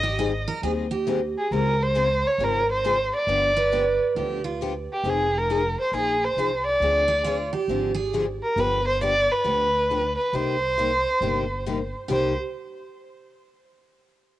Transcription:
Already playing: G#1 D#5
0.03 G4
0.19 D#3 G3 C4 D#4 G#4
0.48 A#4
0.62 D#2 D#3 G3 C4 D#4 G#4
0.91 G4
1.06 D#3 G3 C4 D#4 G#4
1.38 G#4
1.51 C#2 C#3 G#3 C4 F4 G#4 A#4
1.82 C5
1.95 C#3 G#3 C4 F4 G#4
2.27 C#5
2.38 G#1 C#3 G#3 C4 F4 G#4
2.44 A#4
2.72 C5
2.84 C#3 G#3 C4 F4 G#4
3.16 D5
3.27 G1 D3 F3 B3 D4 G4
3.57 B4
3.72 D3 F3 B3 D4 G4
4.15 D2 D3 F3 B3 D4 G4
4.44 F4
4.61 D3 F3 B3 D4 G4
4.93 G4
5.03 F1 F3 C4 D#4 G#4
5.09 G#4
5.38 A#4
5.50 F3 C4 D#4 G#4
5.81 C5
5.92 A#1 F3 C4 D#4 G#4
5.96 G#4
6.24 C5
6.36 C2 F3 C4 D#4 G#4
6.66 D5
6.80 D2 D3 F3 C4 D4 G#4
7.08 G#4
7.24 D3 F3 C4 D4 F4 G#4
7.53 G4
7.68 G#1 D3 F3 C4 D4 G#4
7.94 G#4
8.13 D3 F3 C4 D4 G#4
8.42 A#4
8.56 G1 D3 F3 B3 D4 G4 B4
8.88 C5
9.01 D3 F3 B3 D4 G4 D5
9.32 B4
9.44 D2 D3 F3 B3 D4 G4
9.90 D3 F3 B3 D4 G4
10.17 B4
10.33 C2 C3 G3 A#3 D#4 G4 C5
10.78 C3 G3 A#3 D#4 G4
11.21 G1 C3 G3 A#3 D#4 G4
11.66 C3 G3 A#3 D#4 G4
12.08 C2 C3 G3 A#3 D#4 G4 C5

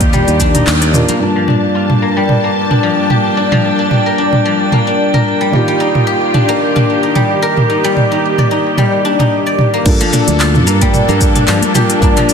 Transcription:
Already playing: D#2 D#3 G3 A#3 D4 D#4 F4 G4 A#4 D5
0.00 kick, closed hi-hat, high conga, shaker
0.13 G3, mid tom, shaker
0.28 D#2, closed hi-hat, muted conga, shaker
0.40 D4, kick, low conga, shaker
0.55 D#4, closed hi-hat, mid tom, shaker
0.67 D#2, clap, shaker
0.82 D5, closed hi-hat, muted conga, shaker
0.93 A#3 D4 F4 A#4, mid tom, shaker
1.09 A#3, closed hi-hat, high conga, low conga, shaker
1.19 G2 G3 A#3 D4 F4 G5 A5
1.23 A5
1.36 F3
1.48 D4, mid tom
1.75 F4
1.90 mid tom
2.02 A#3
2.17 G3
2.29 mid tom
2.44 A#3
2.71 D4, mid tom
2.83 F3
3.10 G4, mid tom
3.37 D4
3.52 F3, mid tom
3.79 D4
3.91 mid tom
4.06 A#4
4.18 D4
4.33 mid tom
4.45 F3
4.72 A#3, mid tom
4.87 D4
5.14 A#4, mid tom
5.41 G3
5.51 D#3 A#3 F4 G4 D5, mid tom
5.55 G4
5.68 G3
5.80 D#4
5.95 mid tom
6.07 G4
6.34 D4, mid tom
6.49 A#3
6.76 D4, mid tom
7.03 D#4
7.15 G3, mid tom
7.42 A#4
7.57 mid tom
7.70 D#4
7.84 G3
7.97 mid tom
8.12 D#4
8.38 D5, mid tom
8.51 D#4
8.78 G3, mid tom
9.05 D4
9.20 D#4, mid tom
9.47 D5
9.59 mid tom
9.74 A#3
9.84 G2 G3 A#3 D4 F4 A4, kick, crash, shaker
10.01 F3, closed hi-hat, high conga, shaker
10.13 D4, mid tom, muted conga, shaker
10.28 D2, closed hi-hat, low conga, shaker
10.40 F4, clap, shaker
10.55 mid tom, shaker
10.67 G2 A#3, shaker
10.81 G3, kick, closed hi-hat, muted conga, high conga, shaker
10.94 mid tom, shaker
11.08 G2 A#3, muted conga, low conga, shaker
11.21 kick, muted conga, shaker
11.36 D4, closed hi-hat, mid tom, shaker
11.48 G2 F3, clap, shaker
11.62 closed hi-hat, high conga, shaker
11.74 A#3 D4 F4 G4 A#4, mid tom, muted conga, low conga, shaker
11.90 closed hi-hat, shaker
12.00 G2 A#3 D4 F4 G4, kick, shaker
12.04 A5
12.16 F3, clap, closed hi-hat, mid tom, high conga, shaker
12.29 muted conga, shaker

